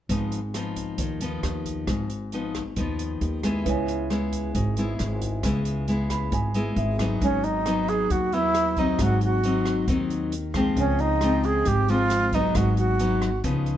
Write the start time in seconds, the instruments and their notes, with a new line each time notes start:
0.09 upright bass G#1, nylon-string guitar G#2 F3 B3 D#4, kick, closed hi-hat
0.32 closed hi-hat
0.54 nylon-string guitar F3 B3 D#4, cross-stick, closed hi-hat
0.76 kick, closed hi-hat
0.98 upright bass D#2, nylon-string guitar D#3, kick, closed hi-hat
1.21 nylon-string guitar F3 B3 D#4, closed hi-hat
1.43 upright bass D#2, cross-stick, closed hi-hat
1.65 kick, closed hi-hat
1.87 upright bass G#1, nylon-string guitar G#2, kick, cross-stick, closed hi-hat
2.10 closed hi-hat
2.32 nylon-string guitar F3 B3 D#4, closed hi-hat
2.54 kick, cross-stick, closed hi-hat
2.76 upright bass D#2, nylon-string guitar D#3 F3 B3 D#4, kick, closed hi-hat
2.99 closed hi-hat
3.21 upright bass D#2, closed hi-hat
3.43 nylon-string guitar G#3 B3 E4, kick, cross-stick, closed hi-hat
3.64 upright bass C#2, nylon-string guitar C#3, grand piano E4 B4 C#5, kick, closed hi-hat
3.69 grand piano G#5
3.88 closed hi-hat
4.10 nylon-string guitar G#3 B3 E4, cross-stick, closed hi-hat
4.33 kick, closed hi-hat
4.55 upright bass G#1, nylon-string guitar G#2, kick, closed hi-hat
4.77 nylon-string guitar G#3 B3 E4, closed hi-hat
4.99 upright bass G#1, cross-stick, closed hi-hat
5.21 kick, closed hi-hat
5.43 upright bass C#2, nylon-string guitar C#3 G#3 B3 E4, kick, cross-stick, closed hi-hat
5.65 closed hi-hat
5.88 nylon-string guitar G#3 B3 E4, closed hi-hat
6.10 grand piano B5, kick, cross-stick, closed hi-hat
6.32 upright bass G#1, nylon-string guitar G#2, grand piano G#5, kick, closed hi-hat
6.54 nylon-string guitar G#3 B3 E4, closed hi-hat
6.76 upright bass G#1, grand piano E5, closed hi-hat
6.99 nylon-string guitar F#3 B3 D#4, kick, cross-stick, closed hi-hat
7.21 upright bass G#1, nylon-string guitar G#2, alto flute C#4, kick, closed hi-hat
7.44 alto flute D#4, closed hi-hat
7.66 nylon-string guitar F#3 B3 D#4, cross-stick, closed hi-hat
7.88 alto flute G#4, closed hi-hat
8.10 upright bass D#2, alto flute F#4, kick, closed hi-hat
8.32 nylon-string guitar F#3 B3, alto flute E4, closed hi-hat
8.54 cross-stick, closed hi-hat
8.76 nylon-string guitar F#3 C4 D#4, alto flute D#4, kick, closed hi-hat
8.99 upright bass G#1, nylon-string guitar G#2, alto flute F#4, kick, cross-stick, closed hi-hat
9.21 alto flute F#4, closed hi-hat
9.43 nylon-string guitar F#3 C4 D#4, closed hi-hat
9.65 cross-stick, closed hi-hat
9.88 upright bass D#2, nylon-string guitar D#3 F#3 C4 D#4, kick, closed hi-hat
10.10 closed hi-hat
10.32 closed hi-hat
10.54 nylon-string guitar F3 G#3 C4, kick, cross-stick, closed hi-hat
10.77 upright bass C#2, nylon-string guitar C#3, alto flute C#4, kick, closed hi-hat
10.99 alto flute D#4, closed hi-hat
11.21 nylon-string guitar F3 G#3 C4, cross-stick, closed hi-hat
11.43 alto flute G#4, closed hi-hat
11.65 upright bass G#1, nylon-string guitar G#2, alto flute G4, kick, closed hi-hat
11.88 nylon-string guitar F3 G#3 C4, alto flute F4, closed hi-hat
12.10 cross-stick, closed hi-hat
12.33 nylon-string guitar F#3 B3 D#4, alto flute D#4, kick, closed hi-hat
12.55 upright bass G#1, nylon-string guitar G#2, alto flute F#4, kick, cross-stick, closed hi-hat
12.77 alto flute F#4, closed hi-hat
12.99 nylon-string guitar F#3 B3 D#4, closed hi-hat
13.22 cross-stick, closed hi-hat
13.44 upright bass C#2, nylon-string guitar C#3 F3 B3 D#4, kick, closed hi-hat
13.66 closed hi-hat